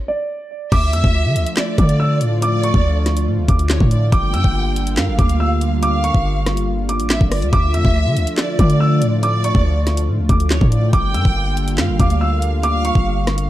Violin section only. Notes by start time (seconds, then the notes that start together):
0.72 E5
1.57 D5
2.42 D5
3.70 C#5
3.91 D5
4.12 G5
4.98 F5
5.82 F5
7.10 E5
7.32 D5
7.53 E5
8.38 D5
9.23 D5
10.51 C#5
10.72 D5
10.93 G5
11.78 F5
12.63 F5